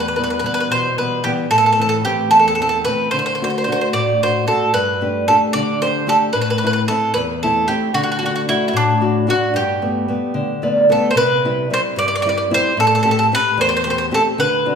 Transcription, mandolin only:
0.00 0.07 B4 medium
0.08 0.15 B4 medium
0.16 0.22 B4 soft
0.24 0.29 B4 medium
0.30 0.38 B4 medium
0.39 0.45 B4 medium
0.46 0.53 B4 medium
0.54 0.59 B4 medium
0.60 0.67 B4 medium
0.72 0.98 C5 medium
0.98 1.23 B4 medium
1.24 1.31 G4 medium
1.51 1.57 A4 medium
1.58 1.65 A4 medium
1.66 1.71 A4 medium
1.72 1.80 A4 medium
1.81 1.88 A4 medium
1.89 1.96 A4 medium
2.05 2.29 G4 medium
2.31 2.38 A4 loud
2.39 2.46 A4 medium
2.48 2.54 A4 medium
2.55 2.60 A4 medium
2.62 2.68 A4 medium
2.69 2.77 A4 medium
2.85 3.09 B4 medium
3.11 3.18 C5 medium
3.19 3.25 C5 medium
3.26 3.34 C5 medium
3.35 3.43 C5 medium
3.44 3.49 C5 medium
3.50 3.57 C5 soft
3.58 3.63 C5 medium
3.64 3.71 C5 medium
3.72 3.80 C5 medium
3.81 3.88 C5 medium
3.93 4.20 D5 medium
4.23 4.47 C5 medium
4.48 4.72 A4 medium
4.74 5.28 B4 medium
5.28 5.35 A4 medium
5.53 5.81 D5 medium
5.82 6.09 C5 medium
6.09 6.16 A4 medium
6.33 6.40 B4 medium
6.42 6.49 B4 medium
6.50 6.57 B4 medium
6.58 6.65 B4 medium
6.67 6.72 B4 medium
6.73 6.81 B4 medium
6.88 7.13 A4 medium
7.14 7.22 B4 medium
7.43 7.67 A4 medium
7.68 7.94 G4 medium
7.94 8.02 F#4 medium
8.03 8.10 F#4 medium
8.12 8.18 F#4 medium
8.19 8.25 F#4 medium
8.26 8.33 F#4 medium
8.36 8.41 F#4 medium
8.49 8.66 E4 medium
8.68 8.75 E4 medium
8.77 9.26 D4 medium
9.30 9.56 F#4 medium
9.56 10.61 G4 medium
10.92 11.10 A4 medium
11.11 11.17 C5 medium
11.17 11.68 B4 medium
11.74 11.80 C5 medium
11.99 12.06 D5 medium
12.08 12.14 D5 medium
12.15 12.21 D5 medium
12.22 12.28 D5 medium
12.29 12.36 D5 medium
12.38 12.44 D5 medium
12.54 12.78 C5 loud
12.80 12.86 A4 medium
12.87 12.94 A4 medium
12.95 13.02 A4 medium
13.03 13.10 A4 medium
13.11 13.18 A4 medium
13.19 13.26 A4 medium
13.35 13.60 B4 loud
13.61 13.68 C5 medium
13.69 13.75 C5 medium
13.77 13.83 C5 medium
13.84 13.89 C5 medium
13.90 13.97 C5 medium
13.98 14.05 C5 medium
14.14 14.21 A4 medium
14.40 14.75 B4 medium

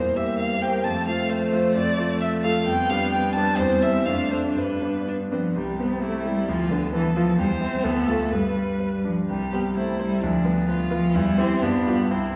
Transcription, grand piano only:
0.00 0.15 E2 soft
0.15 0.58 A#3 soft
0.15 0.58 G4 soft
0.15 0.58 C5 soft
0.62 0.82 A#3 soft
0.62 0.83 G4 soft
0.62 0.83 C5 soft
0.85 1.06 F2 soft
1.06 1.48 A3 soft
1.06 1.48 F4 soft
1.06 1.48 C5 soft
1.52 1.72 A3 soft
1.52 1.73 F4 soft
1.52 1.73 C5 soft
1.75 1.97 F2 medium
1.98 2.39 A3 soft
1.98 2.40 F4 soft
1.98 2.40 A4 soft
2.44 2.64 A3 soft
2.44 2.64 F4 soft
2.44 2.65 A4 soft
2.66 2.88 F2 medium
2.90 3.31 G3 soft
2.90 3.31 D4 soft
2.90 3.31 B4 soft
3.36 3.56 G3 soft
3.36 3.56 D4 soft
3.36 3.56 B4 soft
3.59 3.81 E2 medium
3.82 4.04 G3 soft
3.82 4.04 C4 soft
3.82 4.04 C5 soft
4.06 4.30 F2 medium
4.31 4.53 A3 soft
4.31 4.53 D4 soft
4.31 4.53 C5 soft
4.56 4.80 G2 soft
4.81 5.28 B3 soft
4.81 5.28 D4 soft
4.81 5.28 B4 soft
5.31 5.53 B3 soft
5.31 5.54 D4 soft
5.31 5.54 B4 soft
5.56 6.45 C2 soft
5.79 6.16 C4 soft
6.02 6.39 G4 soft
6.26 6.48 E4 soft
6.49 7.36 D2 soft
6.71 7.07 B3 soft
6.93 7.29 B4 soft
7.16 7.39 F4 soft
7.38 7.83 E2 medium
7.61 7.82 E4 soft
7.61 7.82 C5 soft
7.84 8.31 D2 soft
8.08 8.30 F4 soft
8.08 8.30 A4 soft
8.32 9.26 G2 soft
8.56 8.95 G3 soft
8.79 9.19 B4 soft
9.04 9.29 D4 soft
9.30 10.20 C2 soft
9.53 9.91 G3 soft
9.77 10.14 C5 soft
10.01 10.23 E4 soft
10.23 11.12 D2 medium
10.45 10.81 B3 soft
10.68 11.05 B4 soft
10.91 11.14 F4 medium
11.15 11.61 E2 medium
11.38 11.60 E4 soft
11.38 11.60 G4 medium
11.63 12.09 G2 medium
11.87 12.09 F4 soft
11.87 12.09 G4 soft
12.11 12.36 C2 soft

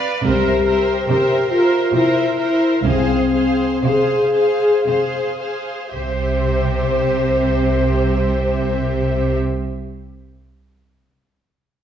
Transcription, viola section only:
0.00 0.25 B4 soft
0.27 0.65 A#4 soft
0.66 1.07 A#4 soft
1.09 1.50 A#4 soft
1.51 1.93 A#4 soft
1.94 2.38 A#4 soft
2.39 2.84 A#4 soft
2.86 3.33 G#4 soft
3.34 3.84 G#4 soft
3.85 4.34 G#4 soft
4.35 4.85 G#4 soft
4.87 5.39 G#4 soft
5.41 5.94 G#4 soft
5.95 9.36 G4 soft

